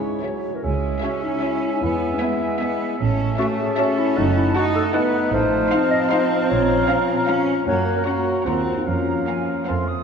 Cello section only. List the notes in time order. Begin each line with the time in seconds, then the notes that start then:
0.63 G#3
1.02 C#4
1.82 B3
2.21 G#3
2.61 B3
3.00 C#4
3.39 A3
3.78 C#4
4.55 D#4
4.95 B3
5.33 A3
5.71 C4
7.27 C#4
7.67 A#3
8.06 A#3
8.46 C4
8.86 F3